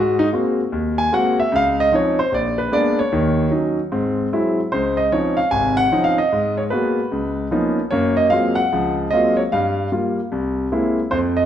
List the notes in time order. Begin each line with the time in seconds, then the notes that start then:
Already playing: G#2 F#4
0.19 D#4
0.33 G#3 A#3 C4 F#4
0.72 D#2
0.98 G#5
1.12 G#3 A#3 C4 F#4 F#5
1.40 E5
1.52 C#2 F5
1.80 D#5
1.92 F3 C4 C#4 D#4 C#5
2.19 C5
2.32 A#1 D5
2.58 B4
2.72 G#3 A#3 B3 D4 D5
2.99 C#5
3.12 D#2 D#3
3.51 F#3 C#4 D#4
3.92 G#2 C4
4.33 F#3 G#3 C4 E4
4.72 C#2 C5
4.97 D#5
5.12 F3 C4 C#4 D#4 C#5
5.37 F5
5.51 G#1 C3 G#5
5.77 F#5
5.92 F3 C4 C#4 D#4
6.04 F5
6.18 D#5
6.32 G#2
6.57 C#5
6.70 G#3 A#3 B3 F#4 B4
7.12 C#2
7.51 F3 A#3 B3 C#4 D#4
7.91 F#2 A#3 C#5
8.17 D#5
8.30 F#3 G#3 A#3 C4 F4 F5
8.55 F#5
8.72 C#2 F3
9.11 F#3 G#3 A#3 C4 F4 D#5
9.37 C#5
9.52 G2 F5
9.92 G3 A#3 F4
10.32 C2
10.72 G#3 A#3 C4 E4
11.11 F2 C5
11.37 D#5